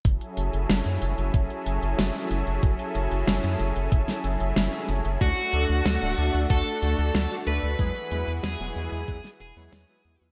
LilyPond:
<<
  \new Staff \with { instrumentName = "Lead electric guitar" } { \time 4/4 \key fis \minor \tempo 4 = 93 r1 | r1 | fis'2 a'4. b'8~ | b'4 gis'4. gis'4. | }
  \new Staff \with { instrumentName = "Analog synth pad" } { \time 4/4 \key fis \minor <fis cis' e' gis' a'>1~ | <fis cis' e' gis' a'>1 | <a d' fis'>1 | <e e' gis' b'>1 | }
  \new Staff \with { instrumentName = "Analog polysynth" } { \time 4/4 \key fis \minor r1 | r1 | <a d' fis'>16 r16 <a d' a'>16 r8 <a d' fis'>16 <a d' fis'>8 <a d' fis'>16 r16 <a d' fis'>16 r8 <a d' fis'>16 <a d' a'>8 | <fis gis b e' gis'>16 r16 <fis gis b e' b'>16 r8 <fis gis b e' gis'>16 <fis gis b e' gis'>8 <fis gis b e' gis'>16 r8 <fis gis b e' cis''>8 <fis gis b e' b'>16 <fis gis b e' gis'>16 <fis gis b e' b'>16 | }
  \new Staff \with { instrumentName = "Analog synth bass" } { \clef bass \time 4/4 \key fis \minor fis,,16 r16 fis,,16 fis,,16 fis,,16 fis,16 fis,,16 fis,,16 fis,,16 r16 fis,,16 fis,,16 fis,,16 r16 fis,,16 fis,,16 | fis,,16 r16 fis,,16 fis,,16 fis,,16 fis,16 fis,,16 fis,,16 fis,,16 r16 fis,,16 fis,,16 fis,,16 r16 fis,,16 fis,,16 | d,16 r16 d,16 d,16 d,16 d,,16 d,16 d,16 d,16 r16 d,16 d,16 d,16 r16 d,16 d,16 | e,16 r16 e,16 e,16 e,16 e,,16 e,16 e,16 e,16 r16 e,,16 e,16 e,16 r16 e,16 e,16 | }
  \new DrumStaff \with { instrumentName = "Drums" } \drummode { \time 4/4 <hh bd>16 hh16 hh16 hh16 <hh sn>16 hh16 hh16 hh16 <hh bd>16 hh16 hh16 hh16 <hh sn>16 hh16 hh16 hh16 | <hh bd>16 hh16 hh16 hh16 <hh sn>16 hh16 hh16 hh16 <hh bd>16 <hh sn>16 hh16 hh16 <hh sn>16 hh16 hh16 hh16 | <hh bd>16 hh16 hh16 hh16 <hh sn>16 hh16 hh16 hh16 <hh bd>16 hh16 hh16 hh16 <hh sn>16 hh16 hh16 hh16 | <hh bd>16 hh16 hh16 hh16 <hh sn>16 hh16 hh16 hh16 <hh bd>16 <hh sn>16 hh16 hh16 <hh sn>16 hh16 hh16 hh16 | }
>>